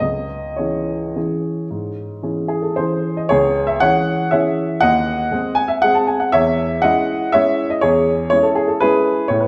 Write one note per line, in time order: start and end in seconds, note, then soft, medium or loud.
0.00 0.57 C#2 soft
0.00 0.57 D#5 medium
0.57 1.12 E3 soft
0.57 1.12 C#4 soft
0.57 1.12 G#4 soft
0.57 3.04 C#5 medium
1.16 1.67 E3 soft
1.16 1.67 C#4 soft
1.16 1.67 G#4 soft
1.71 2.22 G#2 soft
2.23 2.73 E3 soft
2.23 2.74 C#4 soft
2.23 2.47 G#4 soft
2.48 2.63 G#4 medium
2.62 2.77 A4 soft
2.76 3.28 E3 soft
2.76 3.28 C#4 soft
2.76 3.28 G#4 medium
2.76 3.18 C5 medium
3.17 3.31 D#5 medium
3.29 3.80 C#2 medium
3.29 3.66 G#4 medium
3.29 3.68 C#5 medium
3.67 3.81 E5 medium
3.80 4.29 E3 soft
3.80 4.29 C#4 soft
3.80 4.29 G#4 soft
3.80 4.29 C#5 medium
3.80 4.32 F#5 medium
4.31 4.78 E3 soft
4.31 4.78 C#4 soft
4.31 4.79 G#4 soft
4.31 4.79 C#5 medium
4.31 4.81 E5 medium
4.81 5.30 D#2 medium
4.81 5.53 D#5 medium
4.81 5.56 F#5 loud
5.31 5.79 G#3 soft
5.31 5.79 C4 soft
5.31 5.79 G#4 soft
5.55 5.69 G#5 medium
5.68 5.82 E5 medium
5.82 6.30 G#3 soft
5.82 6.30 C4 soft
5.82 6.30 G#4 medium
5.82 5.95 F#5 loud
5.95 6.08 A5 medium
6.07 6.21 G#5 medium
6.20 6.33 F#5 medium
6.32 6.82 E2 medium
6.32 6.79 C#5 medium
6.32 6.82 E5 loud
6.82 7.30 G#3 soft
6.82 7.30 C#4 soft
6.82 7.31 E4 soft
6.82 7.30 D#5 medium
6.82 7.33 F#5 medium
7.32 7.80 G#3 soft
7.32 7.80 C#4 soft
7.32 7.80 E4 soft
7.32 7.69 C#5 medium
7.32 7.71 E5 medium
7.70 7.83 D#5 medium
7.81 8.31 E2 medium
7.81 8.28 G#4 medium
7.81 8.28 C#5 medium
8.30 8.79 G#3 soft
8.30 8.79 C#4 soft
8.30 8.79 E4 soft
8.30 8.44 C#5 medium
8.43 8.57 A4 medium
8.55 8.69 G#4 medium
8.68 8.82 A4 medium
8.80 9.26 G#3 soft
8.80 9.27 C#4 soft
8.80 9.27 E4 medium
8.80 9.27 G#4 medium
8.80 9.29 B4 medium
9.28 9.48 A2 medium
9.28 9.41 C#5 medium
9.40 9.48 B4 medium